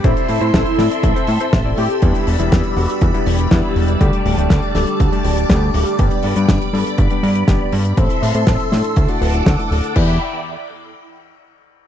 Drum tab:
CC |----------------|----------------|----------------|----------------|
HH |xxoxxxoxxxoxx-ox|xxoxxxoxxxoxx-ox|xxoxxxoxxxoxx-ox|xxoxxxoxxxoxx-ox|
SD |----o-o-----o---|----o-------o---|----o-o-----o---|----o-------o---|
BD |o---o---o---o---|o---o---o---o---|o---o---o---o---|o---o---o---o---|

CC |----------------|x---------------|
HH |xxoxxxoxxxoxxxox|----------------|
SD |----o-o-----o---|----------------|
BD |o---o---o---o---|o---------------|